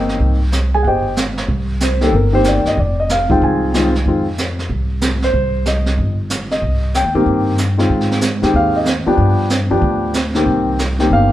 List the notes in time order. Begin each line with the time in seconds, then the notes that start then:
Already playing: G1 D#3 A#3 C4 D#4
0.09 snare
0.20 C2, brush sweep, kick
0.52 snare, hi-hat pedal
0.74 G#4 G#5
0.83 G1 F#5, brush sweep, kick
0.87 G4 C5 D#5 G5
1.16 snare, hi-hat pedal
1.38 snare
1.48 C2, brush sweep, kick
1.80 C5, snare, hi-hat pedal
2.01 D#3 A#3 C4 G4 A4, snare
2.12 G1 A#4, brush sweep, kick
2.32 D#3 A#3 C4 G4 C5
2.44 snare, hi-hat pedal
2.48 D5
2.65 D#5, muted upright bass stroke, snare
2.77 F1 D5, brush sweep, kick
3.00 D#5
3.09 F5, snare, hi-hat pedal
3.29 D#3 G#3 C4 F4 G5, kick
3.41 C2 G#5, brush sweep, kick
3.74 D#3 G#3 C4 F4, snare, hi-hat pedal
3.95 snare
4.06 F2 D#3 G#3 C4 F4, brush sweep, kick
4.38 snare, hi-hat pedal
4.59 snare
4.70 C2, brush sweep, kick
5.01 snare, hi-hat pedal
5.22 C5, snare
5.33 C2, brush sweep, kick
5.65 D#5, snare, hi-hat pedal
5.86 snare
5.98 G1, brush sweep, kick
6.30 snare, hi-hat pedal
6.51 D#5, snare
6.62 C2, brush sweep, kick
6.94 G5, snare, hi-hat pedal
7.05 D#2
7.14 G2 D#3 A#3 C4 G4
7.26 G2, brush sweep, kick
7.58 snare, hi-hat pedal
7.78 D#3 G#3 C4 F4, snare
7.90 G#2, brush sweep, kick
8.01 snare
8.11 snare
8.21 snare, hi-hat pedal
8.42 D#2 D#3 G#3 C4 G4, snare
8.54 D#2 F5, brush sweep, kick
8.76 D#5
8.85 snare, hi-hat pedal
9.06 F3 B3 D4 G4, muted upright bass stroke
9.18 G2, brush sweep, kick
9.50 snare, hi-hat pedal
9.70 F2 F3 B3 D4 G4
9.81 D2, brush sweep, kick
10.14 snare, hi-hat pedal
10.35 D#3 A#3 C4 G4, snare
10.46 C2, brush sweep, kick
10.79 snare, hi-hat pedal
10.99 D#3 A#3 C4 G4, snare
11.10 G1 F5, brush sweep, kick